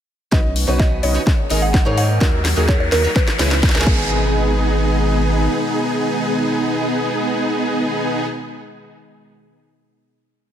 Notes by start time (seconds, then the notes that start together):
0.32 B1 B2 D#3 B3 C#4 D#4 F#4 B4 D#5, kick, snare, riser
0.56 open hi-hat
0.67 B1 B2 C#4 D#4 F#4 B4 C#5
0.79 D#5, kick, snare
1.03 B1 C#4 D#4 F#4 B4 C#5 D#5, open hi-hat
1.14 C#4 D#4 F#4 C#5
1.27 G#3 A#3 G#4, kick, snare
1.50 G#1 G#2 A#3 D#4 G#4 A#4 D#5, open hi-hat
1.62 F#5
1.74 kick, snare
1.85 G#2 A#3 D#4 G#4 A#4 C#5
1.98 F#5, open hi-hat
2.21 D#2 D#3 F#3 A#3 D#4 F#4 A#4, kick, snare
2.45 snare, open hi-hat
2.56 D#2 D#3 A#3 D#4 F#4 G#4 A#4
2.68 C#5, kick, snare
2.80 C#5
2.92 D#2 D#4 F#4 A#4, snare, open hi-hat
3.03 A#3 D#4 F#4 C#5
3.16 C#3 E3 G#3 E4 B4, kick, snare
3.28 snare
3.38 C#2 C#3 G#3 C#4 E4 G#4 B4, snare, open hi-hat
3.51 snare
3.63 kick, snare, open hi-hat
3.69 snare
3.74 C#2 C#3 G#3 C#4 E4 G#4 A#4, snare
3.81 snare
3.85 G#1 B2 D#3 G#3 B3 D#4 G#4, kick